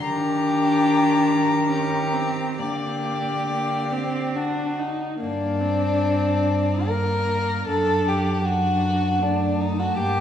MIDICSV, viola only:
0, 0, Header, 1, 2, 480
1, 0, Start_track
1, 0, Key_signature, -2, "minor"
1, 0, Tempo, 827586
1, 21, Time_signature, 3, 2, 24, 8
1, 981, Tempo, 891530
1, 2421, Tempo, 851064
1, 2901, Tempo, 798935
1, 3381, Tempo, 875912
1, 3861, Tempo, 800000
1, 4341, Tempo, 764331
1, 5919, End_track
2, 0, Start_track
2, 0, Title_t, "Viola"
2, 0, Program_c, 0, 41
2, 15, Note_on_c, 0, 62, 82
2, 979, Note_on_c, 0, 61, 73
2, 987, Note_off_c, 0, 62, 0
2, 1217, Note_on_c, 0, 60, 66
2, 1225, Note_off_c, 0, 61, 0
2, 1464, Note_on_c, 0, 58, 66
2, 1472, Note_off_c, 0, 60, 0
2, 1906, Note_off_c, 0, 58, 0
2, 1946, Note_on_c, 0, 58, 73
2, 2181, Note_on_c, 0, 60, 79
2, 2190, Note_off_c, 0, 58, 0
2, 2417, Note_on_c, 0, 62, 81
2, 2426, Note_off_c, 0, 60, 0
2, 2660, Note_on_c, 0, 63, 72
2, 2669, Note_off_c, 0, 62, 0
2, 2887, Note_off_c, 0, 63, 0
2, 2891, Note_on_c, 0, 58, 64
2, 3135, Note_on_c, 0, 60, 69
2, 3144, Note_off_c, 0, 58, 0
2, 3860, Note_off_c, 0, 60, 0
2, 3863, Note_on_c, 0, 58, 58
2, 4333, Note_off_c, 0, 58, 0
2, 4340, Note_on_c, 0, 62, 62
2, 4813, Note_off_c, 0, 62, 0
2, 4818, Note_on_c, 0, 62, 62
2, 5295, Note_on_c, 0, 57, 60
2, 5304, Note_off_c, 0, 62, 0
2, 5772, Note_on_c, 0, 58, 64
2, 5782, Note_off_c, 0, 57, 0
2, 5919, Note_off_c, 0, 58, 0
2, 5919, End_track
0, 0, End_of_file